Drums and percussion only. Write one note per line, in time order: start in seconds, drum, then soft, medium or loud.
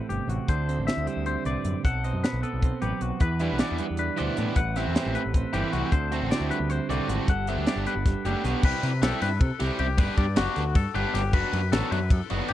0.10 closed hi-hat medium
0.30 closed hi-hat medium
0.48 kick medium
0.48 closed hi-hat medium
0.69 closed hi-hat soft
0.88 snare medium
0.88 closed hi-hat medium
1.07 closed hi-hat medium
1.26 closed hi-hat medium
1.45 closed hi-hat soft
1.65 closed hi-hat medium
1.85 kick medium
1.85 closed hi-hat medium
2.04 closed hi-hat soft
2.24 snare medium
2.24 closed hi-hat medium
2.43 closed hi-hat soft
2.62 kick medium
2.62 closed hi-hat medium
2.82 closed hi-hat soft
3.01 closed hi-hat medium
3.20 kick medium
3.20 closed hi-hat medium
3.39 closed hi-hat medium
3.59 snare medium
3.59 closed hi-hat medium
3.78 closed hi-hat medium
3.97 closed hi-hat medium
4.17 closed hi-hat medium
4.37 closed hi-hat medium
4.56 kick medium
4.56 closed hi-hat medium
4.76 snare soft
4.76 closed hi-hat medium
4.95 snare medium
4.95 closed hi-hat medium
5.15 closed hi-hat soft
5.34 kick medium
5.34 closed hi-hat medium
5.54 closed hi-hat soft
5.73 closed hi-hat medium
5.92 kick medium
5.92 closed hi-hat medium
6.12 closed hi-hat medium
6.31 snare medium
6.31 closed hi-hat medium
6.51 closed hi-hat medium
6.70 closed hi-hat medium
6.90 closed hi-hat medium
7.09 closed hi-hat medium
7.28 kick loud
7.28 closed hi-hat medium
7.47 closed hi-hat medium
7.67 snare medium
7.67 closed hi-hat medium
7.86 closed hi-hat medium
8.06 kick loud
8.06 snare soft
8.06 closed hi-hat medium
8.25 closed hi-hat medium
8.44 snare soft
8.44 closed hi-hat medium
8.63 kick loud
8.63 crash loud
8.83 snare soft
8.83 ride medium
9.02 snare loud
9.02 ride loud
9.22 snare soft
9.22 ride medium
9.41 kick loud
9.41 ride loud
9.60 snare soft
9.60 ride medium
9.79 ride medium
9.98 kick loud
9.98 ride loud
10.17 kick medium
10.17 ride medium
10.36 snare loud
10.36 ride loud
10.56 snare soft
10.56 ride medium
10.75 kick loud
10.75 ride loud
10.95 ride medium
11.15 snare soft
11.15 ride medium
11.33 kick loud
11.33 crash loud
11.53 ride medium
11.72 snare loud
11.72 ride medium
11.92 ride medium
12.10 kick loud
12.10 ride loud
12.30 ride medium
12.48 ride medium